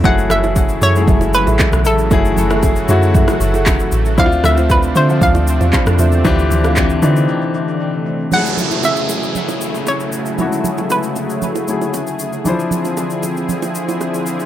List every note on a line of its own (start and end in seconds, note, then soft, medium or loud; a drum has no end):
0.04 0.29 F#1 loud
0.04 4.14 C#3 medium
0.04 4.14 E3 medium
0.04 0.77 F#3 loud
0.04 4.14 F#3 medium
0.04 8.28 A3 medium
0.04 0.77 A3 medium
0.04 2.09 E4 medium
0.04 0.77 E4 medium
0.04 0.18 G#4 medium
0.04 0.78 G#4 loud
0.04 0.18 A4 medium
0.04 0.18 E5 loud
0.04 0.31 F#5 loud
0.04 kick loud
0.04 low conga medium
0.04 shaker medium
0.18 shaker medium
0.30 0.79 F#1 medium
0.30 0.84 E5 loud
0.30 cross-stick loud
0.30 low conga medium
0.30 shaker medium
0.43 0.79 G#4 medium
0.43 0.79 A4 medium
0.43 0.79 E5 medium
0.43 low bongo medium
0.43 shaker soft
0.56 kick loud
0.56 high bongo medium
0.56 shaker medium
0.69 shaker medium
0.81 1.06 F#2 loud
0.81 1.05 G#4 medium
0.81 1.06 A4 medium
0.81 1.36 C#5 loud
0.81 1.06 E5 medium
0.81 shaker medium
0.95 1.78 F#3 medium
0.95 1.01 G#3 medium
0.95 1.78 E4 medium
0.95 1.79 G#4 medium
0.95 shaker medium
1.02 1.81 A3 medium
1.07 1.20 F#1 loud
1.07 1.44 G#4 medium
1.07 1.44 A4 medium
1.07 1.44 E5 loud
1.07 kick loud
1.07 low conga medium
1.07 shaker medium
1.21 1.46 F#1 medium
1.21 low bongo medium
1.21 shaker medium
1.34 1.87 B4 medium
1.34 shaker medium
1.47 1.59 A1 medium
1.47 1.82 G#4 medium
1.47 1.82 A4 medium
1.47 1.82 E5 medium
1.47 low bongo medium
1.47 shaker soft
1.59 kick medium
1.59 clap loud
1.59 high bongo medium
1.59 shaker medium
1.73 1.87 B1 medium
1.73 cross-stick medium
1.73 shaker medium
1.85 2.10 A1 loud
1.85 2.09 G#4 medium
1.85 2.09 A4 medium
1.85 2.34 A4 medium
1.85 2.09 E5 medium
1.85 shaker medium
1.98 shaker medium
2.11 2.36 F#1 loud
2.11 2.73 F#3 loud
2.11 2.74 A3 medium
2.11 2.74 E4 medium
2.11 4.16 F#4 loud
2.11 2.25 G#4 medium
2.11 2.74 G#4 loud
2.11 2.25 A4 medium
2.11 2.25 E5 loud
2.11 kick loud
2.11 low conga medium
2.11 shaker medium
2.25 shaker medium
2.37 2.86 F#1 loud
2.37 low conga medium
2.37 shaker loud
2.50 2.86 G#4 medium
2.50 2.86 A4 medium
2.50 2.86 E5 medium
2.50 cross-stick loud
2.50 low bongo medium
2.50 shaker soft
2.63 kick medium
2.63 high bongo medium
2.63 shaker medium
2.76 shaker medium
2.88 3.26 F#2 loud
2.88 3.71 F#3 medium
2.88 3.72 A3 medium
2.88 3.72 E4 medium
2.88 3.73 F#4 loud
2.88 3.12 G#4 medium
2.88 3.13 A4 medium
2.88 3.13 E5 medium
2.88 shaker medium
3.02 shaker medium
3.14 3.51 G#4 medium
3.14 3.51 A4 medium
3.14 3.51 E5 loud
3.14 kick loud
3.14 low conga medium
3.14 shaker medium
3.28 cross-stick medium
3.28 low bongo medium
3.28 shaker medium
3.40 3.90 F#1 loud
3.40 shaker loud
3.54 3.67 G#4 medium
3.54 3.67 A4 medium
3.54 3.67 E5 medium
3.54 low bongo medium
3.54 shaker medium
3.66 kick loud
3.66 clap medium
3.66 high bongo medium
3.66 shaker medium
3.80 shaker medium
3.92 4.20 A1 medium
3.92 shaker medium
4.05 shaker medium
4.18 4.43 D2 loud
4.18 8.28 C3 medium
4.18 8.28 D3 medium
4.18 8.28 C4 medium
4.18 4.91 C4 medium
4.18 8.28 D4 loud
4.18 4.91 D4 medium
4.18 4.25 E4 medium
4.18 4.32 F4 medium
4.18 4.32 C5 medium
4.18 4.32 E5 loud
4.18 4.45 F5 loud
4.18 kick loud
4.18 low conga medium
4.18 shaker medium
4.26 4.95 F4 loud
4.32 shaker medium
4.44 4.93 D2 loud
4.44 4.71 E5 loud
4.44 cross-stick loud
4.44 low conga medium
4.44 shaker medium
4.57 4.92 F4 medium
4.57 4.93 C5 medium
4.57 4.93 E5 medium
4.57 low bongo medium
4.57 shaker soft
4.70 4.95 B4 medium
4.70 kick loud
4.70 high bongo medium
4.70 shaker medium
4.83 shaker medium
4.95 5.20 D3 loud
4.95 5.19 F4 medium
4.95 5.19 C5 medium
4.95 5.23 C5 medium
4.95 5.20 E5 medium
4.95 shaker medium
5.09 5.91 F3 medium
5.09 5.92 C4 medium
5.09 5.92 D4 medium
5.09 5.92 F4 medium
5.09 shaker medium
5.21 5.34 D2 loud
5.21 5.57 F4 medium
5.21 5.57 C5 medium
5.21 5.58 F5 loud
5.21 7.77 F5 loud
5.21 kick loud
5.21 low conga medium
5.21 shaker medium
5.35 5.59 D2 loud
5.35 low bongo medium
5.35 shaker medium
5.47 shaker loud
5.60 5.72 E2 medium
5.60 5.96 F4 medium
5.60 5.96 C5 medium
5.60 5.96 F5 medium
5.60 low bongo medium
5.60 shaker medium
5.73 kick medium
5.73 clap medium
5.73 high bongo medium
5.73 shaker medium
5.87 5.98 F2 medium
5.87 cross-stick loud
5.87 shaker medium
5.99 6.24 E2 loud
5.99 6.23 F4 medium
5.99 6.23 C5 medium
5.99 6.23 E5 medium
5.99 shaker medium
6.12 shaker medium
6.25 6.49 D2 loud
6.25 6.87 E3 loud
6.25 6.88 C4 loud
6.25 6.88 D4 loud
6.25 6.39 F4 medium
6.25 6.88 G4 loud
6.25 6.39 C5 medium
6.25 6.39 E5 loud
6.25 kick loud
6.25 low conga medium
6.25 shaker medium
6.39 shaker medium
6.50 7.00 D2 loud
6.50 low conga medium
6.50 shaker loud
6.64 6.99 F4 medium
6.64 6.99 C5 medium
6.64 7.00 F5 medium
6.64 cross-stick medium
6.64 low bongo medium
6.64 shaker soft
6.76 kick medium
6.76 clap loud
6.76 high bongo medium
6.76 shaker medium
6.90 shaker medium
7.02 7.27 D3 loud
7.02 7.85 E3 medium
7.02 7.86 C4 medium
7.02 7.86 D4 medium
7.02 7.10 D#4 medium
7.02 7.26 F4 medium
7.02 7.26 C5 medium
7.02 7.26 E5 medium
7.02 shaker medium
7.16 shaker medium
8.30 12.42 C#3 medium
8.30 10.34 F#3 medium
8.30 12.42 F#3 medium
8.30 8.38 G#3 soft
8.30 12.42 A3 medium
8.30 12.42 E4 medium
8.30 10.35 E4 medium
8.30 10.37 G#4 medium
8.30 8.86 F#5 loud
8.30 downlifter medium
8.30 low conga medium
8.30 shaker medium
8.35 10.38 A3 medium
8.35 10.36 G#4 medium
8.46 shaker medium
8.57 low conga medium
8.57 shaker medium
8.71 low bongo medium
8.71 shaker soft
8.83 9.84 E5 loud
8.83 high bongo medium
8.83 shaker medium
8.96 shaker medium
9.09 high bongo soft
9.09 low bongo soft
9.09 shaker medium
9.23 shaker soft
9.35 low conga medium
9.35 shaker medium
9.49 low bongo medium
9.49 shaker soft
9.61 shaker medium
9.75 low bongo medium
9.75 shaker soft
9.87 10.94 C#5 medium
9.87 high bongo medium
9.87 shaker medium
10.00 shaker medium
10.12 shaker medium
10.26 shaker medium
10.37 11.65 F#3 medium
10.37 10.45 G#3 soft
10.37 11.66 E4 medium
10.37 14.46 G#4 medium
10.37 low conga medium
10.37 shaker medium
10.41 11.67 A3 medium
10.41 11.67 F#4 medium
10.52 shaker medium
10.64 low conga medium
10.64 shaker medium
10.78 low bongo medium
10.78 shaker soft
10.90 12.16 B4 medium
10.90 high bongo medium
10.90 shaker medium
11.03 shaker medium
11.16 high bongo soft
11.16 low bongo soft
11.16 shaker medium
11.30 shaker soft
11.42 low conga medium
11.42 shaker medium
11.55 low bongo medium
11.55 shaker medium
11.68 12.45 F#3 medium
11.68 12.46 A3 medium
11.68 12.45 E4 medium
11.68 12.47 G#4 medium
11.68 shaker medium
11.82 low bongo medium
11.82 shaker soft
11.94 high bongo medium
11.94 shaker medium
12.07 shaker medium
12.19 shaker medium
12.33 shaker medium
12.44 14.46 D3 medium
12.44 12.51 E3 medium
12.44 14.46 F3 medium
12.44 14.46 C4 medium
12.44 14.46 D4 medium
12.44 14.46 E4 medium
12.44 low conga medium
12.44 shaker medium
12.48 14.46 F3 medium
12.48 14.46 C5 medium
12.59 shaker medium
12.71 low conga medium
12.71 shaker medium
12.85 low bongo medium
12.85 shaker soft
12.97 high bongo medium
12.97 shaker medium
13.10 shaker medium
13.23 high bongo soft
13.23 low bongo soft
13.23 shaker medium
13.37 shaker soft
13.49 low conga medium
13.49 shaker medium
13.62 low bongo medium
13.62 shaker soft
13.75 shaker medium
13.88 low bongo medium
13.88 shaker soft
14.01 high bongo medium
14.01 shaker medium
14.14 shaker medium
14.26 shaker medium
14.40 shaker medium